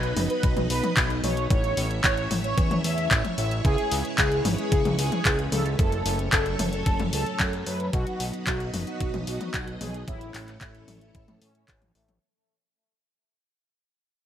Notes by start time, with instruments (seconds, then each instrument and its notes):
Already playing: analog synth bass B1, string machine F#3 B3 D#4 B4 D#5, analog polysynth B4
0.03 closed hi-hat
0.17 analog synth bass F#1, open hi-hat, high tom
0.30 analog polysynth B4, closed hi-hat
0.43 analog synth bass B1, kick, closed hi-hat
0.57 analog synth bass B1, closed hi-hat, high tom
0.70 analog synth bass B1, analog polysynth B4, open hi-hat
0.83 closed hi-hat, high tom
0.97 analog synth bass B1, kick, clap, closed hi-hat
1.10 closed hi-hat
1.24 analog synth bass B1, analog polysynth C#5, open hi-hat, high tom
1.37 closed hi-hat
1.50 analog synth bass A1, string machine A3 C#4 E4 C#5 E5, analog polysynth C#5, kick, closed hi-hat
1.64 closed hi-hat
1.77 analog synth bass A1, open hi-hat
1.91 closed hi-hat
2.04 analog synth bass A1, analog polysynth C#5, kick, clap, closed hi-hat
2.17 closed hi-hat
2.31 analog synth bass A1, open hi-hat, high tom
2.44 analog polysynth C#5, closed hi-hat
2.58 analog synth bass E2, kick, closed hi-hat
2.71 analog synth bass E2, closed hi-hat, high tom
2.84 analog synth bass E2, analog polysynth E5, open hi-hat
2.98 closed hi-hat
3.11 analog synth bass A1, kick, clap, closed hi-hat
3.25 closed hi-hat, high tom
3.38 analog synth bass A1, analog polysynth E5, open hi-hat
3.51 closed hi-hat
3.65 analog synth bass C#2, string machine G#3 C#4 B4, analog polysynth G#4, kick, closed hi-hat
3.78 closed hi-hat
3.91 analog synth bass C#2, open hi-hat
4.05 closed hi-hat
4.18 analog synth bass C#2, analog polysynth G#4, kick, clap, closed hi-hat
4.32 closed hi-hat
4.45 analog synth bass G#1, open hi-hat, high tom
4.58 analog polysynth G#4, closed hi-hat
4.72 analog synth bass C#2, kick, closed hi-hat
4.85 analog synth bass C#2, closed hi-hat, high tom
4.99 analog synth bass C#2, analog polysynth G#4, open hi-hat
5.12 closed hi-hat, high tom
5.25 analog synth bass C#2, kick, clap, closed hi-hat
5.39 closed hi-hat
5.52 analog synth bass C#2, analog polysynth A4, open hi-hat, high tom
5.66 closed hi-hat
5.79 analog synth bass F#1, string machine F#3 A3 C#4 A4 C#5, analog polysynth A4, kick, closed hi-hat
5.92 closed hi-hat
6.06 analog synth bass F#1, open hi-hat
6.19 closed hi-hat
6.33 analog synth bass F#1, analog polysynth A4, kick, clap, closed hi-hat
6.46 closed hi-hat
6.59 analog synth bass F#1, open hi-hat, high tom
6.73 analog polysynth A4, closed hi-hat
6.86 analog synth bass F#1, kick, closed hi-hat
7.00 analog synth bass F#1, closed hi-hat, high tom
7.13 analog synth bass C#2, analog polysynth A4, open hi-hat
7.26 closed hi-hat
7.40 analog synth bass F#2, kick, clap, closed hi-hat
7.53 closed hi-hat
7.67 analog synth bass F#2, analog polysynth B4, open hi-hat
7.80 closed hi-hat
7.93 analog synth bass B1, string machine B3 D#4 B4 D#5, analog polysynth F#4, kick, closed hi-hat
8.07 closed hi-hat
8.20 analog synth bass B1, open hi-hat
8.33 closed hi-hat
8.47 analog synth bass B1, analog polysynth F#4, kick, clap, closed hi-hat
8.60 closed hi-hat
8.74 analog synth bass F#1, open hi-hat, high tom
8.87 analog polysynth F#4, closed hi-hat
9.00 analog synth bass B1, kick, closed hi-hat
9.14 analog synth bass B1, closed hi-hat, high tom
9.27 analog synth bass B1, analog polysynth F#4, open hi-hat
9.41 closed hi-hat, high tom
9.54 analog synth bass B1, kick, clap, closed hi-hat
9.68 closed hi-hat
9.81 analog synth bass B1, analog polysynth G#4, open hi-hat, high tom
9.94 closed hi-hat
10.08 analog synth bass A1, string machine E3 A3 C#4 A4 C#5, analog polysynth E4, kick, closed hi-hat
10.21 closed hi-hat
10.34 analog synth bass A1, clap, open hi-hat
10.48 clap, closed hi-hat
10.61 analog synth bass A1, analog polysynth E4, kick, clap, closed hi-hat
10.75 closed hi-hat
10.88 analog synth bass A1, open hi-hat, high tom
11.01 analog polysynth E4, closed hi-hat
11.15 analog synth bass A1, kick, closed hi-hat
11.28 analog synth bass A2, closed hi-hat, high tom
11.41 analog synth bass A2, analog polysynth C#4, open hi-hat
11.55 closed hi-hat
11.68 analog synth bass A1, kick, clap, closed hi-hat
11.82 closed hi-hat, high tom
11.95 analog synth bass A1, analog polysynth A3, open hi-hat
12.08 closed hi-hat, high tom